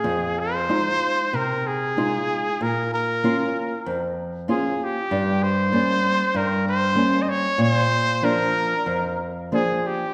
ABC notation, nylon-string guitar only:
X:1
M:4/4
L:1/8
Q:1/4=95
K:Fm
V:1 name="Nylon-string guitar"
F,,2 [A,EF]2 C,2 [A,EF]2 | B,,2 [B,DF]2 F,,2 [B,DF]2 | G,,2 [G,B,D]2 G,,2 [G,B,D]2 | B,,2 [F,B,=D]2 F,,2 [F,B,D]2 |]